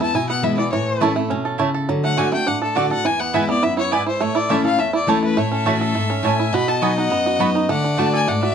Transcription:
Already playing: E2 B3
0.00 B3 E4 A5
0.14 B2 E4 G#5
0.29 B3 F#5
0.42 E3 G#3 B3 E4 E5
0.57 E3 B3 E4 D5
0.72 A2 E3 C#5
1.00 E3 A3 C#4 E4 C#5 A5
1.16 A3 C#4 E4
1.30 B2 C#4
1.45 A4
1.58 C#3 A3 E4 C#5 A5
1.74 A4
1.89 D3 F#3
2.04 A3 F#5
2.17 D3 A3 D4 F#4 D5 F#5 G#5
2.32 A3 D4 F#4 G5
2.47 A2 D4 F#5
2.62 A4
2.75 D3 A3 D4 F#4 D5 F#5
2.90 D4 F#4 A4 F#5
3.05 E2 E3 G#5
3.20 B3 F#5
3.33 E3 G#3 B3 E4 B4 E5 G#5
3.49 B3 E4 D5
3.63 F#2 E4 E5
3.77 E4 C#5
3.91 G#2 B3 E4 B4 D5 G#5
4.06 E4 C5
4.21 A2 A3 C#5
4.35 E4 D5
4.49 E3 A3 C#4 E4 C#5 E5 A5
4.64 C#4 E4 A4 F5
4.78 E2 A3 E5
4.93 E4 D5
5.07 E3 A3 C#4 E4 A4 C#5 A5
5.23 A3 B4
5.37 A2 A3 C#5 E5
5.52 C#4 A4
5.65 E3 A3 C#4 E4 F#4 C#5 A5
5.81 A4
5.94 G#2 A3
6.10 C#4
6.23 A2 A3 E4 C#5 G#5 A5
6.39 E4
6.53 B2 F#4 D#5 B5
6.68 A4 A5
6.81 F#3 B3 D#4 F#4 D#5 G#5 B5
6.97 D#4 F#5
7.10 F#2 B3
7.26 F#4
7.39 F#3 B3 D#4 F#4 D#5 B5
7.55 D#4
7.69 D3 A3 D5 F#5
7.84 D4
7.97 D3 A3 D4 F#4 D5 F#5 A5
8.14 A4 G#5
8.28 G#2 A3 F#5
8.42 F#4 E5

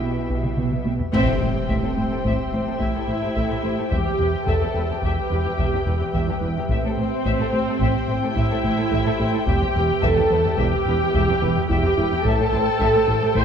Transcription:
Already playing: B1 B2 B3 E4 G4 B4 E5 G5
0.02 B2
0.30 B2, taiko
0.44 taiko mid
0.57 B2, taiko mid
0.71 taiko mid
0.85 B2, taiko high
0.99 taiko low
1.13 A1 A2 C4 G4 C5 E5 G5, taiko, impact
1.27 A2 A4
1.41 A1 A2 C5
1.69 A1 A2 E5, taiko
1.83 A2 A4
1.97 A1 A2 C5
2.11 A2 A4
2.25 A1 A2 E5, taiko
2.53 A1 A2 C5
2.67 A2 A4
2.80 A1 A2 E4 E5, taiko
2.95 A2 A4
3.08 A1 A2 C5
3.23 A2 A4
3.35 A1 A2 A3 E5, taiko
3.48 A2 A4
3.63 A1 A2 A3 C5
3.77 A2 A4
3.90 E1 E2 G4 B4 E5 G5, taiko
4.06 E2 G4
4.19 E1 E2 B4
4.46 E1 E2 A4 E5 A5, taiko
4.62 E2 G4
4.75 E1 E2 B4
4.90 E2 G4
5.01 E1 E2 G4 E5 G5, taiko
5.30 E1 E2 B4
5.45 E2 G4
5.58 E1 E2 E5, taiko
5.73 E2 G4
5.86 E1 E2 B4
6.00 E2 G4
6.14 E1 E2 E3 E5, taiko
6.28 E2 G4
6.41 E1 E2 E3 B4
6.56 E2 G4
6.69 A1 A2 C4 G4 C5 E5 G5, taiko
6.83 A2 A4
6.97 A1 A2 C5
7.25 A1 A2 E5, taiko
7.39 A2 A4
7.53 A1 A2 C5
7.67 A2 A4
7.80 A1 A2 E5, taiko
8.08 A1 A2 C5
8.22 A2 A4
8.36 A1 A2 E4 E5, taiko
8.50 A2 A4
8.64 A1 A2 C5
8.78 A2 A4
8.91 A1 A2 A3 E5, taiko
9.06 A2 A4
9.19 A1 A2 A3 C5
9.33 A2 A4
9.47 E1 E2 G4 B4 E5 G5, taiko
9.61 E2 G4
9.75 E1 E2 B4
10.03 E1 E2 A4 E5 A5, taiko
10.17 E2 G4
10.31 E1 E2 B4
10.45 E2 G4
10.58 E1 E2 G4 E5 G5, taiko
10.86 E1 E2 B4
11.01 E2 G4
11.14 E1 E2 E5, taiko
11.28 E2 G4
11.41 E1 E2 B4
11.56 E2 G4
11.69 E1 E2 E3 G4 E5 G5, taiko
11.83 E2 G4
11.97 E1 E2 E3 B4
12.12 E2 G4
12.24 A1 A2 G4 A4 C5 E5 G5 A5, taiko
12.39 A2 A4
12.52 A1 A2 C5
12.80 A1 A2 E5, taiko
12.94 A2 A4
13.08 A1 A2 C5
13.22 A2 A4
13.35 A1 A2 C5 E5 C6, taiko

